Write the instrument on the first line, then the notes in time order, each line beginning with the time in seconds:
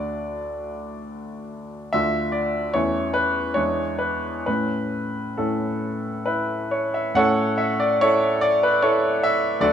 grand piano
Already playing: D2 A3 D4 F#4 D5
1.93 D2 A3 D4 F4 E5
2.32 D5
2.74 E2 A3 C#4 E4 C#5
3.14 B4
3.54 E2 G#3 D4 E4 C#5
3.99 B4
4.46 A2 A3 C#4 E4 B4
5.37 A2 A3 C#4 E4 A4
6.26 E4 B4
6.71 C#5
6.94 E5
7.14 A2 A3 C#4 E4 A4 C#5 F#5
7.58 E5
7.80 D5
8.01 E4 A4 C#5
8.41 D5
8.63 B4
8.82 E4 A4 C#5
9.23 E5
9.60 D2 F#3 A3 D4 F#4 A4 D5